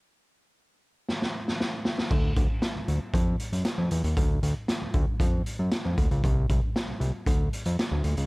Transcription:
<<
  \new Staff \with { instrumentName = "Analog synth bass" } { \clef bass \time 4/4 \key c \lydian \tempo 4 = 116 r1 | d,8 d,16 r8 d,16 d,16 r16 f,8 r16 fis,16 r16 f,16 e,16 ees,16 | d,8 d,16 r8 d,16 d,16 r16 f,8 r16 fis,16 r16 f,16 d,16 cis,16 | c,8 c,16 r8 c,16 c,16 r16 d,8 r16 f,16 r16 d,16 d,16 cis,16 | }
  \new DrumStaff \with { instrumentName = "Drums" } \drummode { \time 4/4 r4 r4 sn16 sn8 sn16 sn8 sn16 sn16 | <cymc bd>8 <hh bd>8 <hh sn>8 hh8 <hh bd>8 hh16 hh16 <hh sn>8 hh16 hh16 | <hh bd>8 hh8 <hh sn>8 <hh bd>8 <hh bd>8 hh8 <hh sn>8 <hh bd>16 hh16 | <hh bd>8 <hh bd>8 <hh sn>8 hh8 <hh bd>8 hh16 hh16 <hh sn>8 hh16 hh16 | }
>>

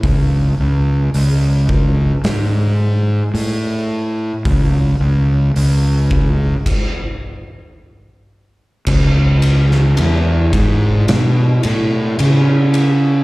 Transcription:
<<
  \new Staff \with { instrumentName = "Fingered electric bass" } { \clef bass \time 4/4 \key cis \minor \tempo 4 = 54 cis,8 cis,8 cis,4 gis,4 a,4 | cis,8 cis,8 cis,4 r2 | cis,4 e,8 gis,8 b,8 a,8 cis4 | }
  \new DrumStaff \with { instrumentName = "Drums" } \drummode { \time 4/4 <hho bd>4 hho8 bd8 <hho sn>4 hho4 | <hho bd>4 hho8 bd8 <cymc bd>4 r4 | <cymc bd>8 cymr16 sn16 cymr8 <bd cymr>8 <cymr sn>8 cymr8 cymr8 cymr8 | }
>>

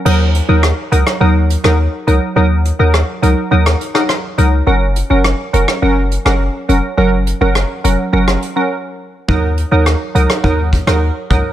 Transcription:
<<
  \new Staff \with { instrumentName = "Synth pluck" } { \time 4/4 \key ees \minor \tempo 4 = 104 <ges ees' bes'>16 r8 <ges ees' bes'>8. <ges ees' bes'>8 <ges ees' bes'>8. <ges ees' bes'>8. <ges ees' bes'>8 | <ges ees' bes'>16 r8 <ges ees' bes'>8. <ges ees' bes'>8 <ges ees' bes'>8. <ges ees' bes'>16 r8 <ges ees' bes'>16 r16 | <ges des' bes'>16 r8 <ges des' bes'>8. <ges des' bes'>8 <ges des' bes'>8. <ges des' bes'>8. <ges des' bes'>8 | <ges des' bes'>16 r8 <ges des' bes'>8. <ges des' bes'>8 <ges des' bes'>8. <ges des' bes'>16 r4 |
<ges ees' bes'>16 r8 <ges ees' bes'>8. <ges ees' bes'>8 <ges ees' bes'>8. <ges ees' bes'>8. <ges ees' bes'>8 | }
  \new Staff \with { instrumentName = "808-style bass" } { \clef bass \time 4/4 \key ees \minor ees,8. ees,8 r16 des,16 r16 ees,8. ees,8 r16 des,16 r16 | ees,8. ees,8 r16 des,16 r16 ees,8 r4 des,8 | ges,,8. ges,,8 r16 f,,16 r16 ges,,8. ges,,8 r16 f,,16 r16 | ges,,8. ges,,8 r16 f,,16 r16 ges,,8 r4. |
ees,8. ees,8 r16 des,16 r16 ees,8. ees,8 r16 des,16 r16 | }
  \new DrumStaff \with { instrumentName = "Drums" } \drummode { \time 4/4 cymc8 hh8 ss8 hh16 ss16 r8 hh16 ss16 r8 hh8 | r8 hh8 ss8 hh8 r16 ss16 hh16 ss16 ss8 hh8 | r8 hh8 ss8 hh16 ss16 r8 hh16 ss16 r8 hh8 | r8 hh8 ss8 hh8 r16 ss16 hh8 r4 |
bd8 hh8 ss8 hh16 ss16 bd8 <hh bd>16 ss16 r8 <hh bd>8 | }
>>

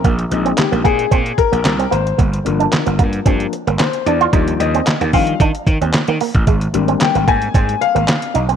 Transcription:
<<
  \new Staff \with { instrumentName = "Grand piano" } { \time 4/4 \key ees \major \tempo 4 = 112 r4 g'8 aes'4 bes'4 c''8 | r2. c''8 d''8~ | d''8 ees''4 f''8 r2 | r4 g''8 aes''4 f''4 ees''8 | }
  \new Staff \with { instrumentName = "Grand piano" } { \time 4/4 \key ees \major r8 <aes c' ees'>4. r2 | r8 <f bes d'>4. <f bes d'>8 r4. | <f g d'>8 r4 <f g d'>8 r2 | r8 <g bes c' d'>2.~ <g bes c' d'>8 | }
  \new Staff \with { instrumentName = "Clean electric guitar" } { \time 4/4 \key ees \major bes16 r8 c'16 r16 bes16 bes16 r16 c'16 r8 bes16 r16 c'16 bes16 r16 | bes16 r8 d'16 r16 bes16 bes16 r16 c'16 r8 bes16 r8 d'16 f'16 | ees'16 r8 c'16 r16 bes16 c'16 r16 d'16 r8 c'16 r16 bes16 bes16 r16 | aes16 r8 c'16 r16 bes16 bes16 r16 c'16 r8 bes16 r8 ees'16 c'16 | }
  \new Staff \with { instrumentName = "Slap bass" } { \clef bass \time 4/4 \key ees \major bes,,8 bes,,8 r16 bes,,16 bes,8 bes,8 r16 bes,,16 c,8 aes,,8 | g,,8 g,,8 r16 g,,16 g,8 g,8 r16 g,,16 r8 fes,8 | ees,8 ees,8 r16 ees,16 ees8 ees16 r16 ees16 ees,16 r16 ees16 r16 a,,16 | aes,,8 aes,,8 r16 aes,,16 aes,8 aes,8 r16 aes,,16 r8 ces,8 | }
  \new DrumStaff \with { instrumentName = "Drums" } \drummode { \time 4/4 <hh bd>16 hh16 hh16 hh16 <hc hh sn>16 hh16 <hh bd>16 hh16 <hh bd>16 hh16 <hh bd>16 hh16 <hc hh sn>16 hh16 hh16 hh16 | <hh bd>16 hh16 hh16 hh16 <hc hh sn>16 hh16 <hh bd>16 hh16 <hh bd>16 hh16 hh16 hh16 <hc hh sn>16 hh16 hh16 hh16 | <hh bd>16 hh16 hh16 hh16 <hc hh sn>16 hh16 <hho bd>16 hh16 <hh bd>16 hh16 <hh bd>16 hh16 <hc hh sn>16 hh16 hho16 <hh bd>16 | <hh bd>16 hh16 hh16 hh16 <hc hh sn>16 hh16 <hh bd>16 hh16 <hh bd>16 hh16 hh16 hh16 <hc hh sn>16 hh16 hh16 hh16 | }
>>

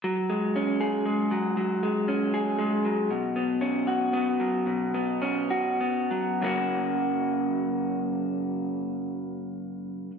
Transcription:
\new Staff \with { instrumentName = "Clean electric guitar" } { \time 3/4 \key fis \major \tempo 4 = 110 fis8 gis8 cis'8 gis'8 gis8 fis8 | fis8 gis8 cis'8 gis'8 gis8 fis8 | b,8 b8 cis'8 fis'8 b8 fis8 | b,8 b8 cis'8 fis'8 b8 fis8 |
<fis, cis fis ais cis' fis'>2.~ | <fis, cis fis ais cis' fis'>2. | }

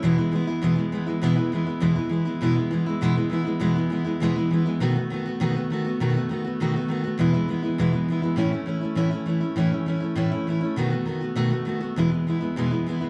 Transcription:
\new Staff \with { instrumentName = "Steel-string acoustic guitar" } { \time 4/4 \key e \major \tempo 4 = 201 <e, b, e gis b e'>8 <e gis b e'>8 <e gis b e'>8 <e gis b e'>8 <e, b, e gis b e'>8 <e gis b e'>8 <e gis b e'>8 <e gis b e'>8 | <e, b, e gis b e'>8 <e gis b e'>8 <e gis b e'>8 <e gis b e'>8 <e, b, e gis b e'>8 <e gis b e'>8 <e gis b e'>8 <e gis b e'>8 | <e, b, e gis b e'>8 <e gis b e'>8 <e gis b e'>8 <e gis b e'>8 <e, b, e gis b e'>8 <e gis b e'>8 <e gis b e'>8 <e gis b e'>8 | <e, b, e gis b e'>8 <e gis b e'>8 <e gis b e'>8 <e gis b e'>8 <e, b, e gis b e'>8 <e gis b e'>8 <e gis b e'>8 <e gis b e'>8 |
<b, dis a b fis'>8 <a b fis'>8 <dis a b fis'>8 <a b fis'>8 <b, dis a b fis'>8 <a b fis'>8 <dis a b fis'>8 <a b fis'>8 | <b, dis a b fis'>8 <a b fis'>8 <dis a b fis'>8 <a b fis'>8 <b, dis a b fis'>8 <a b fis'>8 <dis a b fis'>8 <a b fis'>8 | <e, b, e gis b e'>8 <e gis b e'>8 <e gis b e'>8 <e gis b e'>8 <e, b, e gis b e'>8 <e gis b e'>8 <e gis b e'>8 <e gis b e'>8 | <a, e a cis' e'>8 <a cis' e'>8 <e a cis' e'>8 <a cis' e'>8 <a, e a cis' e'>8 <a cis' e'>8 <e a cis' e'>8 <a cis' e'>8 |
<a, e a cis' e'>8 <a cis' e'>8 <e a cis' e'>8 <a cis' e'>8 <a, e a cis' e'>8 <a cis' e'>8 <e a cis' e'>8 <a cis' e'>8 | <b, dis a b fis'>8 <a b fis'>8 <dis a b fis'>8 <a b fis'>8 <b, dis a b fis'>8 <a b fis'>8 <dis a b fis'>8 <a b fis'>8 | <e, b, e gis b e'>8 <e gis b e'>8 <e gis b e'>8 <e gis b e'>8 <e, b, e gis b e'>8 <e gis b e'>8 <e gis b e'>8 <e gis b e'>8 | }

